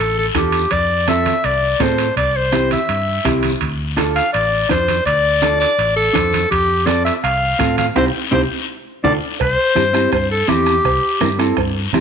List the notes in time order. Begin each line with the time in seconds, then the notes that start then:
Already playing: A4
0.00 A1
0.18 A4, high conga
0.35 E2 D4 F4 G4 A4, bombo low, bombo rim, high conga, high timbale, short guiro
0.52 high timbale, short guiro
0.71 F2 D5, bombo low, high conga, high timbale, long guiro
1.08 C4 F4 A4 E5, bombo rim, high conga, high timbale, short guiro
1.26 high conga, high timbale, short guiro
1.44 C2 D5, high timbale, long guiro
1.63 high conga
1.80 A2 C4 F4 A4 C5, bombo low, bombo rim, high conga, high timbale, low timbale, short guiro
1.98 high timbale, short guiro
2.16 C2 D5, bombo low, high conga, high timbale, long guiro
2.36 C5
2.52 C4 E4 G4, bombo rim, high conga, high timbale, short guiro
2.71 E5, high conga, high timbale, short guiro
2.89 G2, high timbale, long guiro
3.08 high conga
3.25 C2 C4 E4 G4, bombo low, bombo rim, high conga, high timbale, short guiro
3.43 high conga, high timbale, short guiro
3.61 D2, bombo low, high conga, high timbale, long guiro
3.97 D4 F4 A4, bombo rim, high conga, high timbale, short guiro
4.16 F5, high timbale, short guiro
4.33 A1 D5, high timbale, long guiro
4.53 high conga
4.69 F2 D4 F4 C5, bombo low, bombo rim, high conga, high timbale, short guiro
4.88 high conga, high timbale, short guiro
5.06 D2 D5, bombo low, high conga, high timbale, long guiro
5.42 D4 F4 A4, bombo rim, high conga, high timbale, short guiro
5.60 D5, high timbale, short guiro
5.78 A1, high timbale, long guiro
5.96 A4, high conga
6.13 F2 D4 F4 C5, bombo low, bombo rim, high conga, high timbale, short guiro
6.33 high conga, high timbale, short guiro
6.51 F2 G4, bombo low, high conga, high timbale, long guiro
6.86 C4 F4 A4 D5, bombo rim, high conga, high timbale, short guiro
7.05 E5, high timbale, short guiro
7.24 C2 F5, bombo rim, high timbale, long guiro
7.42 high conga
7.59 A2 C4 F4 A4, bombo low, bombo rim, high conga, high timbale, short guiro
7.78 F5, high conga, high timbale, short guiro
7.96 C2 C4 E4 G4 C5, bombo low, low conga, high timbale, long guiro
8.31 C2 C4 E4 G4 C5, bombo low, low conga, high timbale, long guiro
9.04 D2 D4 F4 A4 D5, bombo low, low conga, high timbale, long guiro
9.40 C2 C5, bombo low, bombo rim, cowbell, high conga, long guiro
9.75 G2 C4 E4 G4, bombo rim, high conga, short guiro
9.93 C4 E4 G4, bombo rim, short guiro
10.12 G2 C5, bombo low, bombo rim, cowbell, high conga, long guiro
10.31 A4
10.48 E2 C4 E4 G4, bombo rim, high conga, short guiro
10.66 bombo rim, short guiro
10.85 C2, bombo low, bombo rim, cowbell, high conga, long guiro
11.21 G2 C4 E4 A#4, bombo rim, high conga, short guiro
11.39 C4 E4 A4, bombo rim, short guiro
11.57 G2, bombo low, bombo rim, cowbell, high conga, long guiro
11.93 E2 C4 E4 G4, bombo low, bombo rim, high conga, low conga, short guiro